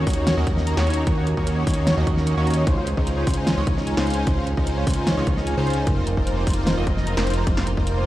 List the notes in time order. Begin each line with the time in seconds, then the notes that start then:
Already playing: D#3 C#4 F#4
0.07 D#2 A#3 C#4 D#4 F#4 C#5, kick, closed hi-hat, open hi-hat
0.13 A#5, closed hi-hat
0.27 C#5, snare, closed hi-hat
0.37 D#2 A#3 C#4 D#4 F#4 D#5
0.47 D#2 A#3 C#4 D#4 F#4 A#4 D#5, kick, closed hi-hat
0.57 D#5, snare
0.67 A#5, closed hi-hat
0.77 D#2 A#3 C#4 D#4 F#4 C#5, snare
0.87 C#6, closed hi-hat
0.90 closed hi-hat
0.94 A#5, closed hi-hat
1.07 D#2 A#3 C#4 D#4 F#4 A#4 C#5, kick, closed hi-hat
1.17 F#5
1.27 A#4, closed hi-hat
1.37 D#2 A#3 C#4 D#4 F#4 C#5 D#5, kick
1.47 A#4, closed hi-hat
1.57 C#5
1.67 D#2 A#3 C#4 D#4 F#4 C#5, kick, closed hi-hat, open hi-hat
1.74 A#5, closed hi-hat
1.87 C#5, snare, closed hi-hat
1.97 D#2 A#3 C#4 D#4 F#4 D#5
2.07 D#2 A#3 C#4 D#4 F#4 D#5 C#6, kick, closed hi-hat
2.17 A#4, snare
2.27 C#6, closed hi-hat
2.37 D#2 A#3 C#4 D#4 F#4 C#5 C#6
2.47 A#5, closed hi-hat
2.50 closed hi-hat
2.54 D#5, closed hi-hat
2.67 C#2 C#3 G#3 C4 C#4 D#4 F4 C5, kick, closed hi-hat
2.77 F5
2.87 C5, closed hi-hat
2.97 C#2 G#3 C#4 D#4 F4 C5 D#5, kick
3.07 C5, closed hi-hat
3.17 C#5
3.27 C#2 G#3 C#4 D#4 F4 C5 C#5, kick, closed hi-hat, open hi-hat
3.34 G#5, closed hi-hat
3.47 C#5, snare, closed hi-hat
3.57 C#2 G#3 C#4 D#4 F4 C#5 D#5
3.67 C#2 G#3 C#4 D#4 F4 C5 C#5, kick, closed hi-hat
3.77 D#5, snare
3.87 G#5, closed hi-hat
3.97 C#2 G#3 C#4 D#4 F4 C5, snare
4.07 C6, closed hi-hat
4.10 closed hi-hat
4.14 G#5, closed hi-hat
4.27 C#2 G#3 C#4 D#4 F4 C5, kick, closed hi-hat
4.37 F5
4.47 C5, closed hi-hat
4.57 C#2 G#3 C#4 D#4 F4 C5 D#5, kick
4.67 C5, closed hi-hat
4.77 C#5
4.87 C#2 G#3 C#4 D#4 F4 C5 C#5, kick, closed hi-hat, open hi-hat
4.94 G#5, closed hi-hat
5.07 C#5, snare, closed hi-hat
5.17 C#2 G#3 C#4 D#4 F4 C#5 D#5
5.27 C#2 G#3 C#4 D#4 F4 C5 C#5, kick, closed hi-hat
5.37 D#5, snare
5.47 G#5, closed hi-hat
5.57 C#2 G#3 C#4 D#4 F4 C5
5.67 C6, closed hi-hat
5.70 closed hi-hat
5.73 G#5, closed hi-hat
5.87 F1 F3 A#3 C4 D#4 F4 A#4 C5, kick, closed hi-hat
5.97 F5
6.07 A#4, closed hi-hat
6.17 F1 A#3 C4 D#4 F4 C5 D#5, kick
6.27 A#4, closed hi-hat
6.37 C5
6.47 F1 A#3 C4 D#4 F4 C5, kick, closed hi-hat, open hi-hat
6.54 A#5, closed hi-hat
6.67 C5, snare, closed hi-hat
6.77 F1 A#3 C4 D#4 F4 D#5
6.87 F1 A#3 C4 D#4 F4 A#4 D#5, kick, closed hi-hat
6.97 D#5, snare
7.07 A#5, closed hi-hat
7.17 F1 A#3 C4 D#4 F4 A#4 C5, snare
7.27 C6, closed hi-hat
7.30 closed hi-hat
7.34 A#5, closed hi-hat
7.47 F1 A#3 C4 D#4 F4 A#4 C5, kick, closed hi-hat
7.57 F5, snare
7.67 A#4, closed hi-hat
7.77 F1 A#3 C4 D#4 F4 C5 D#5, kick
7.87 A#4, closed hi-hat
7.97 C5